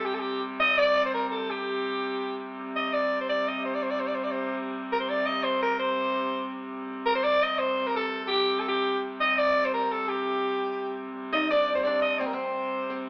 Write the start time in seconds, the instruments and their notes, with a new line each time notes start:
Already playing: hurdy-gurdy C3 G3
0.05 soprano saxophone G4
0.14 soprano saxophone A4
0.20 soprano saxophone G4
0.60 soprano saxophone D#5
0.78 soprano saxophone D5
1.06 soprano saxophone C5
1.14 soprano saxophone A#4
1.29 soprano saxophone A4 A#4
1.51 soprano saxophone G4
2.59 hurdy-gurdy C3 G3
2.76 soprano saxophone D#5
2.93 soprano saxophone D5
3.21 soprano saxophone C5
3.29 soprano saxophone D5
3.48 soprano saxophone D#5
3.65 soprano saxophone C5
3.74 soprano saxophone D5
3.83 soprano saxophone C5
3.91 soprano saxophone D5
4.00 soprano saxophone C5
4.07 soprano saxophone D5
4.15 soprano saxophone C5
4.24 soprano saxophone D5
4.31 soprano saxophone C5
4.92 soprano saxophone A#4
5.00 soprano saxophone C5
5.09 soprano saxophone D5
5.26 soprano saxophone D#5
5.44 soprano saxophone C5
5.62 soprano saxophone A#4
5.79 soprano saxophone C5
6.87 hurdy-gurdy C3 G3
7.06 soprano saxophone A#4
7.15 soprano saxophone C5
7.23 soprano saxophone D5
7.43 soprano saxophone D#5
7.59 soprano saxophone C5
7.87 soprano saxophone A#4
7.96 soprano saxophone A4
8.24 soprano saxophone G4 A4
8.30 soprano saxophone G4
8.60 soprano saxophone A4
8.68 soprano saxophone G4
9.20 soprano saxophone D#5
9.38 soprano saxophone D5
9.65 soprano saxophone C5
9.74 soprano saxophone A#4
9.92 soprano saxophone A4
10.09 soprano saxophone G4
11.12 hurdy-gurdy C3 G3
11.33 oud D#4, soprano saxophone D#5
11.51 oud D4, soprano saxophone D5
11.75 oud C4, soprano saxophone C5
11.84 oud D4, soprano saxophone D5
12.02 soprano saxophone D#5
12.19 oud C4, soprano saxophone C5
12.26 soprano saxophone A#4
12.33 oud C4, soprano saxophone C5
12.90 oud C4